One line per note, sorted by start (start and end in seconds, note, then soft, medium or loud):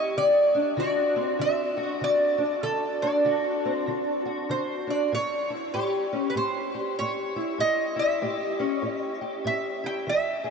0.00 0.11 A2 medium
0.00 0.13 C#4 medium
0.00 0.13 E4 medium
0.00 0.14 G4 medium
0.00 0.14 D#5 medium
0.17 0.73 D3 medium
0.17 0.79 D5 loud
0.55 2.37 D4 medium
0.77 1.34 D3 medium
0.77 1.76 F#4 medium
0.77 1.36 D5 medium
1.16 2.61 C4 medium
1.39 1.96 D3 medium
1.39 2.04 E5 loud
1.77 3.24 F#4 medium
2.01 2.58 D3 medium
2.01 2.66 D5 medium
2.38 2.60 D4 medium
2.63 3.20 D3 medium
2.63 3.02 A4 medium
3.02 4.86 D4 medium
3.02 4.22 D5 medium
3.25 3.82 D3 medium
3.25 4.24 F#4 medium
3.65 5.10 C4 medium
3.87 4.44 D3 medium
4.25 5.12 F#4 medium
4.49 5.07 D3 medium
4.49 4.89 C5 medium
4.87 5.08 D4 medium
4.87 5.12 D5 medium
5.12 5.69 A2 medium
5.12 5.71 C#5 medium
5.50 7.36 E4 medium
5.74 6.31 A2 medium
5.74 6.73 G4 medium
5.74 6.32 C#5 medium
6.12 7.57 C#4 medium
6.30 6.35 B4 medium
6.35 6.92 A2 medium
6.35 6.98 C5 medium
6.74 7.57 G4 medium
6.99 7.56 A2 medium
6.99 7.56 C#5 medium
7.36 7.95 E4 medium
7.58 8.16 A2 medium
7.58 7.95 D#5 loud
7.96 9.82 E4 medium
7.96 9.18 E5 medium
8.21 8.79 A2 medium
8.21 9.20 G4 medium
8.59 10.04 C#4 medium
8.82 9.40 A2 medium
9.21 10.04 G4 medium
9.44 10.02 A2 medium
9.44 9.81 E5 medium
9.84 10.05 E4 medium
9.84 10.10 G5 medium
10.07 10.50 E3 medium
10.07 10.50 E5 medium
10.44 10.50 G#4 medium